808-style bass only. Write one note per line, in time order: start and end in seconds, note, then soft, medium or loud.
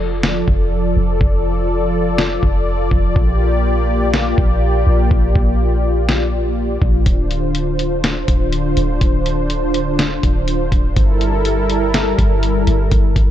0.00 0.44 F1 loud
0.48 0.95 F1 loud
0.96 1.20 F1 loud
1.21 2.39 F1 loud
2.43 2.90 F1 loud
2.91 3.15 F1 loud
3.16 4.34 A#1 loud
4.38 4.85 A#1 loud
4.86 5.10 A#1 loud
5.11 5.34 A#1 loud
5.36 6.78 A#1 loud
6.82 7.05 A#1 loud
7.06 8.24 D1 loud
8.28 8.75 D1 loud
8.77 9.00 D1 loud
9.01 10.19 D1 loud
10.23 10.70 D1 loud
10.72 10.95 D1 loud
10.97 12.14 G1 loud
12.19 12.65 G1 loud
12.67 12.91 G1 loud
12.92 13.15 G1 loud
13.16 13.31 G1 loud